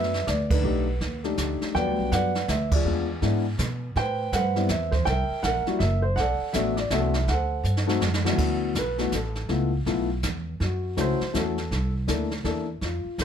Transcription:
Already playing: upright bass F#2, upright piano B4 D5 E5
0.03 snare
0.14 snare
0.27 upright bass D2, upright piano D5, kick, snare, hi-hat pedal
0.50 upright piano D4 D#4 B4, kick, crash
0.63 upright bass B1, upright piano A3 D4 D#4 G4, brush sweep
1.01 upright bass D#2, kick, snare
1.24 upright piano A3 D4 D#4 G4, snare
1.37 upright bass D2, kick, snare, hi-hat pedal
1.62 muted upright bass stroke, snare
1.75 upright bass E2, upright piano F#3 G3 B3 D4 B4 D5 G5, brush sweep, kick, snare
1.87 upright bass D2
1.99 upright bass B1
2.12 upright bass F#2, upright piano B4 D5 F#5, kick, snare, hi-hat pedal
2.35 snare
2.48 upright bass D2, upright piano E5, kick, snare, hi-hat pedal
2.72 upright piano F4 G#4 D5, kick, crash
2.85 upright bass E2, upright piano G#3 B3 D4 F4, brush sweep
3.22 upright bass G#2, upright piano G#3 B3 D4 E4, kick, snare
3.59 upright bass B2, kick, snare, hi-hat pedal
3.96 upright bass A2, upright piano B4 C5 G5, brush sweep, kick, snare
4.32 upright bass G2, upright piano B4 C5 F#5, kick, snare, hi-hat pedal
4.56 upright piano G3 B3 C4 E4, snare
4.69 upright bass E2, upright piano E5, kick, snare, hi-hat pedal
4.91 upright piano C5, kick, snare
5.05 upright bass C2, upright piano A#4 E5 G5, brush sweep, kick, snare
5.29 muted upright bass stroke
5.43 upright bass A#1, upright piano F#5, kick, snare, hi-hat pedal
5.47 upright piano A#4
5.66 upright piano G3 A#3 E4 F#4, muted upright bass stroke, snare
5.79 upright bass F#1, upright piano E5, kick, snare
6.02 upright piano C5
6.16 upright bass B1, upright piano A4 F#5, brush sweep, kick, snare
6.20 upright piano D5
6.40 muted upright bass stroke
6.53 upright bass A1, upright piano A3 B3 D4 F#4 E5, kick, snare, hi-hat pedal
6.77 upright piano D5, snare
6.90 upright bass C2, upright piano A3 B3 D4 F#4 E5, kick, snare, hi-hat pedal
6.94 upright piano A4
7.14 snare
7.28 upright bass D2, upright piano A4 F#5, brush sweep, kick, snare
7.32 upright piano C5
7.64 upright bass G2, hi-hat pedal
7.77 snare
7.87 upright piano A3 C4 D#4 F#4, snare
8.01 upright bass F#2, snare
8.14 snare
8.24 upright piano D3 A3 B3 E4 F#4, snare
8.38 upright bass D2, upright piano F#4, brush sweep, kick, snare, crash
8.75 upright bass B1, upright piano B4, kick, snare, hi-hat pedal
8.98 upright piano A3 B3 E4 F#4, snare
9.12 upright bass A1, upright piano A4, kick, snare, hi-hat pedal
9.35 snare
9.49 upright bass C#2, upright piano A3 B3 E4 F4, brush sweep, kick, snare
9.86 upright bass B1, upright piano A3 B3 E4 F4, kick, snare
10.23 upright bass E2, kick, snare, hi-hat pedal
10.60 upright bass F#2, upright piano F#4, brush sweep, kick, snare
10.97 upright bass C#2, upright piano A3 C#4 E4 F#4 C5, kick, snare, hi-hat pedal
11.21 muted upright bass stroke, snare
11.33 upright bass E2, upright piano A3 C#4 E4 F#4 A4, kick, snare, hi-hat pedal
11.58 snare
11.71 upright bass C2, brush sweep, kick, snare
12.07 upright bass D2, upright piano A#3 D4 E4 A4, kick, snare, hi-hat pedal
12.31 snare
12.44 upright bass E2, upright piano A#3 D4 E4 A4, kick, snare
12.81 upright bass F2, upright piano F4, brush sweep, kick, snare
13.05 muted upright bass stroke
13.18 upright bass D2, kick, snare, hi-hat pedal

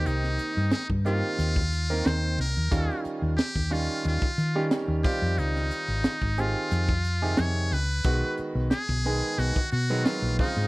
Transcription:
Already playing: grand piano D#3 A#3 C4 G4
0.06 fingered electric bass C2, muted trumpet D#4, closed hi-hat
0.23 snare
0.39 closed hi-hat
0.57 fingered electric bass G2
0.71 muted trumpet D#4, muted fingered electric bass stroke, snare, closed hi-hat
0.90 fingered electric bass G2, kick
1.05 grand piano D#3 A#3 C4 G4, muted trumpet F4, closed hi-hat
1.39 fingered electric bass D#2, closed hi-hat
1.56 kick
1.72 closed hi-hat
1.90 grand piano D#3 A#3 C4 A#4
2.06 fingered electric bass D#2, muted trumpet C5, snare, closed hi-hat
2.38 fingered electric bass C2, muted trumpet A#4, snare, open hi-hat
2.57 fingered electric bass D#2
2.71 fingered electric bass D#2, grand piano D#3 G3 C#4 F4, kick, closed hi-hat
2.90 snare
3.05 muted fingered electric bass stroke, closed hi-hat
3.22 fingered electric bass D#2
3.37 muted trumpet G4, snare, closed hi-hat
3.56 fingered electric bass D#2, kick
3.70 grand piano D#3 G3 C#4 F4, muted trumpet F4, open hi-hat
4.04 fingered electric bass D#2, muted trumpet F4, closed hi-hat
4.22 kick
4.38 fingered electric bass D#3, closed hi-hat
4.55 grand piano D#3 G3 C#4 G4
4.71 snare, closed hi-hat
4.88 fingered electric bass D#2
5.04 grand piano D#3 G3 C4 F4, muted trumpet G4, muted fingered electric bass stroke, kick, open hi-hat
5.22 fingered electric bass F2
5.38 fingered electric bass C#2, muted trumpet D#4, closed hi-hat
5.56 snare
5.71 closed hi-hat
5.88 fingered electric bass G#1
6.04 muted fingered electric bass stroke, snare, closed hi-hat
6.22 fingered electric bass G#1, kick
6.38 grand piano D#3 C4 G4 G#4, muted trumpet F4, snare, closed hi-hat
6.71 fingered electric bass F2, closed hi-hat
6.89 kick
7.05 closed hi-hat
7.22 grand piano C3 D#3 G4 G#4
7.37 fingered electric bass F2, muted trumpet C#5, snare, closed hi-hat
7.71 fingered electric bass C#2, muted trumpet B4, snare, open hi-hat
8.04 fingered electric bass B1, grand piano D#3 G#3 B3 F#4, kick, closed hi-hat
8.38 muted fingered electric bass stroke, closed hi-hat
8.55 fingered electric bass B1
8.71 muted trumpet G#4, snare, closed hi-hat
8.89 fingered electric bass B1, kick
9.05 grand piano D#3 G#3 B3 G#4, snare, open hi-hat
9.38 fingered electric bass B1, muted trumpet F#4, closed hi-hat
9.56 kick
9.72 fingered electric bass B2, muted trumpet F#4, closed hi-hat
9.90 grand piano D#3 F#3 G#3 B3
10.05 muted trumpet F4, snare, closed hi-hat
10.22 fingered electric bass A#1
10.39 grand piano C#3 G#3 C4 F4, muted trumpet D#4, muted fingered electric bass stroke, kick, open hi-hat
10.56 fingered electric bass G#2, snare

